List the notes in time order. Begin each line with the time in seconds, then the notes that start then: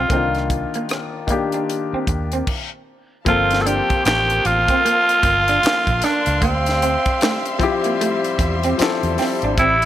Already playing: D3 B3 C4 F4 A4
0.08 C2 D3 A#3 C4 D4, kick, closed hi-hat
0.13 D#3 F4
0.35 cross-stick, closed hi-hat
0.50 muted clean electric guitar stroke, kick, closed hi-hat
0.74 A#3, closed hi-hat
0.89 muted clean electric guitar stroke, cross-stick, closed hi-hat
1.27 D#3 A#3 D4, kick, closed hi-hat
1.32 G4
1.52 D4, closed hi-hat
1.70 closed hi-hat
1.93 C4, muted fingered electric bass stroke
2.07 D#2, muted clean electric guitar stroke, kick, closed hi-hat
2.32 C4, closed hi-hat
2.47 kick, crash
3.25 G1 F3 A#3 C4 F4 F5 A5 C6, kick, closed hi-hat
3.30 A4
3.51 snare, closed hi-hat
3.62 A4
3.66 D4 G4, closed hi-hat
3.90 muted fingered electric bass stroke, kick, closed hi-hat
4.05 A1 A#3 G4, snare, clap, closed hi-hat
4.30 closed hi-hat
4.45 A1 F4, muted clean electric guitar stroke, closed hi-hat
4.68 C4, kick, closed hi-hat
4.85 A#3, closed hi-hat
5.09 closed hi-hat
5.23 G1, muted clean electric guitar stroke, kick, closed hi-hat
5.48 D4, closed hi-hat
5.63 muted fingered electric bass stroke, snare, clap, closed hi-hat
5.87 A#1, kick, closed hi-hat
6.02 D4, snare, closed hi-hat
6.26 C#2, closed hi-hat
6.42 D2 G3 A#3 C4 E5, kick, closed hi-hat
6.66 snare, closed hi-hat
6.82 C4, closed hi-hat
7.06 muted fingered electric bass stroke, kick, closed hi-hat
7.21 A3, snare, clap, closed hi-hat
7.45 closed hi-hat
7.59 F3 C4 E4, muted clean electric guitar stroke, kick, closed hi-hat
7.63 G4
7.84 A#3, closed hi-hat
8.01 A3, closed hi-hat
8.24 closed hi-hat
8.39 E2, muted clean electric guitar stroke, kick, closed hi-hat
8.63 C4, closed hi-hat
8.78 F3 C4 E4, muted clean electric guitar stroke, muted fingered electric bass stroke, closed hi-hat
8.82 A4, snare, clap
9.03 E2, closed hi-hat
9.18 C4, snare, open hi-hat
9.42 G#1 D4, closed hi-hat
9.58 A1 C4 E4 D5 B5, kick, closed hi-hat
9.82 closed hi-hat